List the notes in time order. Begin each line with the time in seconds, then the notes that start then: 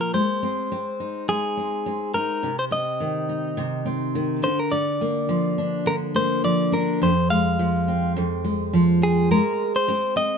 Already playing: A#2 F3 A#3
0.01 A#4
0.14 G#3 C5
0.43 C4
0.72 C4
1.00 D#4
1.29 G#3 G#4
1.57 C4
1.86 C4
2.14 D#4 A#4
2.43 C3
2.59 C5
2.71 C4 D#5
3.00 D#3
3.29 D#4
3.57 C3
3.86 C4
4.15 D#3
4.43 D3 C5
4.59 A#4
4.72 D3 D5
5.01 A#3
5.29 F3
5.58 D4
5.86 D3 A#4
6.15 A#3 C5
6.44 F3 D5
6.72 D4 A#4
7.02 F2 C5
7.30 G#3 F5
7.59 F3
7.88 C4
8.16 F2
8.44 G#3
8.73 F3
9.02 C4 G#4
9.31 G#3 A#4
9.76 C5
9.88 C4
10.16 C4 D#5